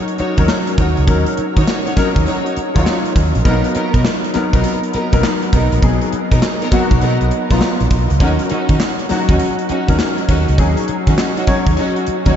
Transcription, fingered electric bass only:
0.20 muted fingered electric bass stroke soft
0.38 0.47 D#2 medium
0.78 0.94 D#2 medium
0.98 1.06 C#2 medium
1.08 1.23 D#2 medium
1.38 muted fingered electric bass stroke soft
1.57 1.65 D#3 medium
1.97 muted fingered electric bass stroke soft
2.16 2.25 D#2 medium
2.57 muted fingered electric bass stroke soft
2.76 2.84 D#2 medium
3.16 3.32 D#2 medium
3.36 3.44 A#1 medium
3.45 3.61 B1 loud
3.76 muted fingered electric bass stroke soft
3.94 4.03 B2 medium
4.35 muted fingered electric bass stroke soft
4.54 4.62 B1 medium
4.94 muted fingered electric bass stroke soft
5.13 5.22 B1 medium
5.53 5.69 B1 medium
5.73 5.81 A#1 medium
5.83 5.99 B1 loud
6.13 muted fingered electric bass stroke soft
6.32 6.40 B2 medium
6.72 muted fingered electric bass stroke soft
6.91 7.00 B1 medium
7.02 7.17 B2 loud
7.21 7.30 B1 medium
7.51 7.59 B1 medium
7.81 7.89 A#1 medium
7.91 8.07 B1 medium
8.11 8.19 C#2 medium
8.21 8.36 D#2 loud
8.51 muted fingered electric bass stroke soft
8.70 8.78 D#3 medium
9.11 muted fingered electric bass stroke soft
9.29 9.38 D#2 medium
9.70 muted fingered electric bass stroke soft
9.89 9.97 D#2 medium
10.29 10.44 D#2 medium
10.49 10.57 C#2 medium
10.59 10.74 D#2 loud
10.89 muted fingered electric bass stroke medium
11.07 11.16 D#3 medium
11.48 muted fingered electric bass stroke soft
11.67 11.75 D#2 medium
12.08 muted fingered electric bass stroke soft
12.26 12.35 D#2 medium

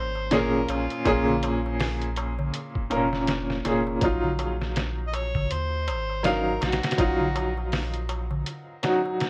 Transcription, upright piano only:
0.00 0.27 A#2 medium
0.00 0.28 A#3 medium
0.00 0.29 C#4 medium
0.00 0.29 G#4 medium
0.31 1.02 A#2 medium
0.31 1.02 A#3 medium
0.31 1.03 C#4 medium
0.31 1.03 G#4 loud
1.05 1.19 A#2 medium
1.05 1.20 A#3 medium
1.05 1.20 C#4 medium
1.05 1.20 G#4 loud
2.90 3.61 A#2 medium
2.90 3.62 A#3 medium
2.90 3.62 C#4 medium
2.90 3.62 A#4 medium
3.65 3.98 A#2 medium
3.65 3.99 A#3 medium
3.65 3.99 C#4 medium
3.65 3.99 G#4 medium
4.01 6.20 F#3 medium
4.01 6.21 D#4 medium
4.01 6.22 F4 medium
6.23 6.94 F#3 medium
6.23 6.95 D#4 medium
6.23 6.95 F5 loud
6.98 7.12 F#3 medium
6.98 7.12 D#4 medium
6.98 7.13 F4 loud
8.83 9.30 F#3 medium
8.83 9.30 D#4 medium
8.83 9.30 F#4 medium

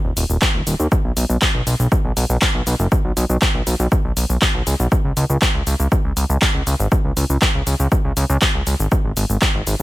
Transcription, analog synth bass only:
0.05 0.12 D#1 medium
0.17 0.25 D#1 loud
0.30 0.37 D#1 medium
0.55 0.62 D#1 medium
0.67 0.75 D#1 loud
0.80 0.87 D#2 medium
1.05 1.12 B1 medium
1.17 1.25 B1 loud
1.30 1.37 B1 medium
1.55 1.62 B1 medium
1.67 1.75 B1 medium
1.80 1.87 B1 medium
2.05 2.12 B1 medium
2.17 2.25 B1 loud
2.30 2.37 B1 medium
2.55 2.62 B1 medium
2.67 2.75 B1 loud
2.80 2.87 F#1 medium
3.05 3.12 B1 medium
3.17 3.25 B1 loud
3.30 3.37 B1 medium
3.55 3.62 B1 medium
3.67 3.75 B1 loud
3.80 3.87 B1 loud
4.05 4.12 B1 medium
4.17 4.25 B1 loud
4.30 4.37 B1 medium
4.55 4.62 B1 medium
4.67 4.75 C#2 medium
4.80 4.87 B1 medium
5.05 5.12 C#2 medium
5.17 5.25 C#2 loud
5.30 5.37 C#2 medium
5.55 5.62 C#2 medium
5.67 5.75 C#2 loud
5.80 5.87 C#2 medium
6.05 6.12 C#2 medium
6.17 6.25 C#2 loud
6.30 6.37 C#2 loud
6.55 6.62 C#2 medium
6.67 6.75 C#2 loud
6.80 6.87 G#1 medium
7.05 7.12 C#2 medium
7.17 7.25 C#2 loud
7.30 7.37 C#2 medium
7.55 7.62 C#2 medium
7.67 7.75 C#2 medium
7.80 7.87 C#2 medium
8.05 8.12 C#2 medium
8.17 8.25 C#2 loud
8.30 8.37 C#2 loud
8.55 8.62 C#2 medium
8.67 8.75 C#2 loud
8.80 8.87 G#1 medium
9.05 9.12 G#1 medium
9.17 9.25 G#1 loud
9.30 9.37 G#1 medium
9.55 9.62 G#1 medium
9.67 9.75 G#1 medium

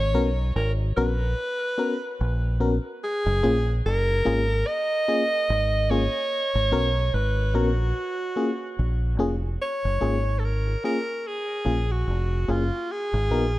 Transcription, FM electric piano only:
0.14 0.29 B3 loud
0.14 0.29 C#4 loud
0.14 0.29 F#4 medium
0.14 0.29 A#4 loud
0.79 0.86 F#4 soft
0.79 0.86 A#4 soft
0.97 1.12 B3 medium
0.97 1.11 C#4 medium
0.97 1.12 F#4 medium
0.97 1.12 A#4 loud
1.78 1.93 B3 medium
1.78 1.93 C#4 medium
1.78 1.93 F#4 medium
1.78 1.94 A#4 loud
2.60 2.75 B3 medium
2.60 2.75 C#4 medium
2.60 2.75 F#4 medium
2.60 2.76 A#4 loud
2.84 2.91 F#4 soft
2.84 2.91 A#4 soft
3.43 3.58 A#3 loud
3.43 3.58 C#4 loud
3.43 3.58 F4 medium
3.43 3.58 G#4 loud
4.09 4.15 F4 soft
4.09 4.15 G#4 soft
4.25 4.40 A#3 medium
4.25 4.40 C#4 medium
4.25 4.40 F4 loud
4.25 4.41 G#4 loud
5.08 5.23 A#3 medium
5.08 5.23 C#4 medium
5.08 5.23 F4 medium
5.08 5.23 G#4 loud
5.90 6.05 A#3 medium
5.90 6.05 C#4 medium
5.90 6.05 F4 medium
5.90 6.05 G#4 loud
6.72 6.87 B3 loud
6.72 6.87 C#4 medium
6.72 6.87 F#4 medium
6.72 6.87 A#4 loud
7.37 7.44 F#4 soft
7.37 7.44 A#4 soft
7.54 7.69 B3 loud
7.54 7.69 C#4 medium
7.54 7.70 F#4 medium
7.54 7.70 A#4 loud
8.36 8.51 A#3 medium
8.36 8.51 C#4 medium
8.36 8.52 F4 medium
8.36 8.52 G#4 medium
9.19 9.34 A#3 medium
9.19 9.34 C#4 medium
9.19 9.34 F4 medium
9.19 9.34 G#4 loud
9.43 9.50 F4 soft
9.43 9.50 G#4 soft
10.01 10.16 A#3 medium
10.01 10.16 C#4 medium
10.01 10.16 F4 medium
10.01 10.16 G#4 loud
10.67 10.73 F4 soft
10.67 10.73 G#4 soft
10.84 10.99 A#3 medium
10.84 10.99 C#4 medium
10.84 10.99 F4 medium
10.84 10.99 G#4 loud
11.65 11.80 A#3 medium
11.65 11.80 C#4 medium
11.65 11.81 F4 medium
11.65 11.81 G#4 medium
12.48 12.63 A#3 medium
12.48 12.63 C#4 medium
12.48 12.63 F4 medium
12.48 12.63 G#4 loud
13.31 13.46 B3 medium
13.31 13.46 D#4 medium
13.31 13.46 F#4 medium
13.31 13.46 A#4 loud

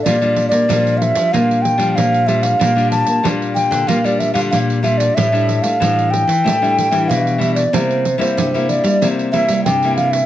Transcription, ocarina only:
0.02 0.48 D5 loud
0.49 0.99 D5 medium
0.97 1.03 F5 medium
1.02 1.33 E5 medium
1.32 1.63 F5 medium
1.62 1.97 G5 loud
1.95 2.28 F5 loud
2.27 2.44 E5 medium
2.42 2.91 F5 medium
2.91 3.27 A5 loud
3.55 3.89 G5 medium
3.87 4.07 F5 loud
4.05 4.21 D5 medium
4.19 4.33 E5 medium
4.34 4.40 F5 medium
4.51 4.58 F5 medium
4.83 4.99 E5 medium
4.98 5.16 D5 medium
5.15 5.64 E5 medium
5.62 6.12 F5 medium
6.11 7.10 G5 loud
7.08 7.40 F5 medium
7.39 7.54 E5 medium
7.55 7.75 D5 medium
7.74 8.20 C5 medium
8.21 8.71 C5 medium
8.69 9.07 D5 medium
9.32 9.63 E5 medium
9.65 9.95 G5 medium
9.96 10.13 F5 loud
10.11 10.26 E5 medium

